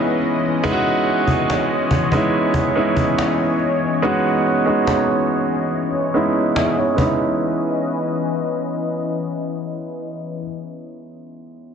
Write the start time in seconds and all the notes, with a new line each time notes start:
Already playing: E3 G#3 B3 C#4 D#4 E4 B4 D#5
0.22 cajon slap
0.64 G#3 B3 C#4 D#4 E4 C#5, cajon bass
0.72 F#4
1.06 cajon slap
1.28 cajon bass
1.50 cajon slap
1.91 cajon bass
2.12 G#3 B3 C#4 D#4 E4, cajon bass
2.34 cajon slap
2.54 cajon bass
2.75 G#3 B3 C#4 D#4 E4, cajon slap
2.97 cajon bass
3.19 cajon slap
3.60 cajon slap
4.02 G#3 B3 C#4 D#4 F#4
4.65 G#3 B3 C#4 D#4 F#4
4.87 cajon slap
6.14 G#3 B3 C#4 D#4 E4
6.56 G#4 E5, cajon slap
6.79 E4 C#5
6.94 G#3 B3 C#4 D#5, cajon bass
6.98 E3 C#4 D#4 B4
7.03 E4